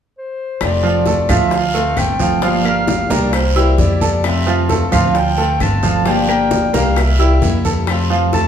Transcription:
0.18 C5
0.61 F1 C3 F3 A3 C4 F4 D5, high bongo, high conga, long guiro, claves
0.83 F3 F4 F5, high conga
1.06 A3 A4 A5, high bongo, high conga, short guiro
1.29 D2 F3 A3 C4 F4 E5 F5, high bongo, high conga, low conga, short guiro, claves
1.51 F5, muted steel-string acoustic guitar stroke, high bongo, high conga, long guiro
1.74 A3 C4 F4 A4 A5, high bongo, high conga
1.96 G1 D3 A3 C4 F4 G5, high bongo, low bongo, high conga, short guiro, claves
2.19 F3 F4 F5, high bongo, high conga, short guiro
2.42 D3 F3 A#3 D4 F4 G4 F5, high bongo, long guiro
2.65 A#3 A#4 F5 A#5, high conga, claves
2.87 high bongo, high conga, short guiro
3.10 C2 F3 A#3 D4 G4 A#4 D5 A#5, high bongo, high conga, short guiro
3.33 C5, muted steel-string acoustic guitar stroke, high bongo, high conga, long guiro, claves
3.56 G3 A#3 E4 G4 E5 E6, high bongo, high conga
3.78 F2 G3 A#3 E4 G4 D5, high bongo, low bongo, high conga, short guiro
4.01 A4 A5, high bongo, high conga, short guiro
4.24 C3 F3 A3 C4 F4 E5, high bongo, high conga, long guiro, claves
4.47 F3 F4 F5, high conga
4.69 A3 A4 A5, high bongo, high conga, short guiro
4.92 D2 F3 A3 C4 F4 F5, high bongo, high conga, low conga, short guiro, claves
5.15 G5, muted steel-string acoustic guitar stroke, high bongo, long guiro
5.37 A3 C4 F4 A4 A5, high bongo, high conga
5.60 G1 D3 A3 C4 F4 A5, high bongo, low bongo, high conga, short guiro, claves
5.83 F3 F4 F5, high bongo, high conga, short guiro
6.05 D3 F3 A#3 D4 F4 G4 F5 G5, high bongo, high conga, long guiro
6.28 A#3 A#4 G5 A#5, high conga, claves
6.51 high bongo, high conga, short guiro
6.73 C2 F3 A#3 D4 G4 A#4 F5 A#5, high bongo, high conga, short guiro
6.96 E5, muted steel-string acoustic guitar stroke, high bongo, high conga, long guiro, claves
7.19 G3 A#3 E4 G4 E5 E6, high bongo, high conga
7.42 F2 G3 A#3 E4 G4, high bongo, low bongo, high conga, short guiro
7.64 A4 A5, high bongo, high conga, short guiro
7.87 C3 F3 A3 C4 F4, high bongo, long guiro, claves
8.10 F3 F4 F5, high conga
8.32 A3 A4 A5, high bongo, high conga, short guiro

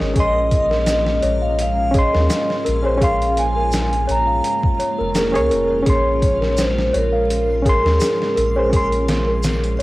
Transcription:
Already playing: G#3 A#3 C#4 G#4 A#4 C#5 D#5 F5
0.00 G#1 C#5, snare
0.14 A#1 C#4 F4 G#4 A#4, kick, closed hi-hat
0.19 D#5 C6
0.51 D#5, kick, closed hi-hat
0.70 A#4, snare
0.86 snare, closed hi-hat, shaker
1.07 snare
1.22 A#1 C#5, closed hi-hat
1.42 F5
1.59 F5, closed hi-hat
1.91 C#4 G#4 C#5, kick, closed hi-hat
1.95 D#5 C6
2.13 D#2 A#4, snare
2.29 G#4, snare, closed hi-hat, shaker
2.50 snare
2.65 A#1 A#4, closed hi-hat
2.83 C#4 G#4 C5 C#5
2.97 C#4 G#4, kick
3.02 F5 C6, closed hi-hat
3.22 closed hi-hat
3.37 G#5, closed hi-hat
3.56 A#4
3.72 snare, closed hi-hat, shaker
3.93 closed hi-hat
4.07 A#1 C#5 A#5, closed hi-hat
4.27 F5
4.44 closed hi-hat
4.63 kick
4.79 C#5, closed hi-hat
4.99 F1 A#4
5.15 G#4 A#4, snare, closed hi-hat, shaker
5.32 C#2 C#4 G#4 C#5, closed hi-hat
5.50 F1 A#4, closed hi-hat
5.70 C#5
5.82 C#4 G#4 C6, closed hi-hat
5.87 A#1 C#5 C6, kick
6.22 C#5, kick, closed hi-hat
6.41 A#4, snare
6.58 C5, snare, closed hi-hat, shaker
6.78 snare
6.93 A#1 A#4 C#5, closed hi-hat
7.13 F5
7.30 closed hi-hat
7.62 C#4 G#4 C#5, kick, closed hi-hat
7.69 C6
7.84 D#2 A#4, snare
8.00 G#4, snare, closed hi-hat, shaker
8.22 snare
8.36 A#1 A#4, closed hi-hat
8.56 C#4 G#4 C5 C#5
8.69 C#4 G#4, kick, closed hi-hat
8.76 C6
8.92 closed hi-hat
9.08 snare, closed hi-hat
9.27 A#4
9.43 snare, closed hi-hat, shaker
9.64 closed hi-hat
9.79 C#5

